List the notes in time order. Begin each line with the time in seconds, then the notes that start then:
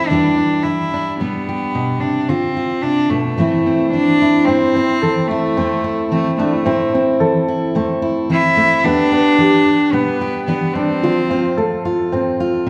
Already playing: E4
0.08 E2 E3 G3 D4
0.12 D4 G4
0.38 D4
0.63 E3 E4
0.94 D4
1.19 B2 G3 B3
1.49 G4
1.75 B2
2.00 C3 D4
2.29 D3 C4 F4
2.57 F4
2.82 C3 D4
3.10 B2 A3
3.38 A2 E3 A3 C4 E4
3.66 C4
3.91 E3 D4
4.22 E4
4.45 A2 C4 E4
4.75 C4
5.02 E3 A4
5.27 A3
5.31 E4
5.57 E2 A3 C4
5.84 E4
6.09 E3 A3 C4
6.37 A3 D4
6.52 E4
6.66 A2 C4 E4
6.93 C4
7.20 E3 A4
7.48 E4
7.75 E2 A3 C4
8.02 E4
8.30 E3 C4 E4
8.57 A3 E4
8.84 E2 B3 D4 G4
9.12 B3 D4
9.38 E3 G4
9.66 G4
9.92 B2 G3 B3
10.21 G4
10.46 E3 B3 D4
10.74 G3 C4 D4
11.03 D3 F3 F4
11.31 C4 F4
11.57 A3 A4
11.85 F4
12.12 A2 C4
12.40 F4